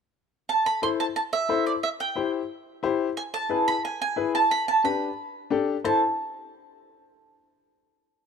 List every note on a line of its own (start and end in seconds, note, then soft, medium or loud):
0.49 0.65 A5 medium
0.66 0.83 B5 medium
0.82 1.06 E4 medium
0.82 1.06 A4 medium
0.82 1.06 C5 medium
0.82 0.88 C6 medium
1.00 1.05 A5 loud
1.16 1.21 A5 medium
1.33 1.64 E5 medium
1.49 1.73 E4 medium
1.49 1.73 A4 medium
1.49 1.73 C5 medium
1.67 1.72 D5 medium
1.83 1.88 E5 medium
2.00 2.31 G5 medium
2.16 2.39 E4 medium
2.16 2.40 G4 medium
2.16 2.40 C5 medium
2.83 3.06 E4 medium
2.83 3.07 G4 medium
2.83 3.07 C5 medium
3.17 3.22 G#5 medium
3.34 3.65 A5 loud
3.49 3.73 E4 medium
3.49 3.73 G#4 medium
3.49 3.74 B4 medium
3.68 3.83 B5 loud
3.85 4.00 G#5 medium
4.02 4.32 G#5 medium
4.16 4.40 E4 medium
4.16 4.41 G#4 medium
4.16 4.41 B4 medium
4.35 4.50 A5 medium
4.51 4.67 B5 loud
4.68 4.84 A5 medium
4.84 5.07 D4 medium
4.84 5.08 G4 medium
4.84 5.08 B4 medium
4.84 5.64 B5 medium
5.50 5.74 D4 medium
5.50 5.74 G4 medium
5.50 5.75 A4 medium
5.84 6.00 E4 medium
5.84 6.00 A4 medium
5.84 6.00 C5 medium
5.84 6.00 A5 medium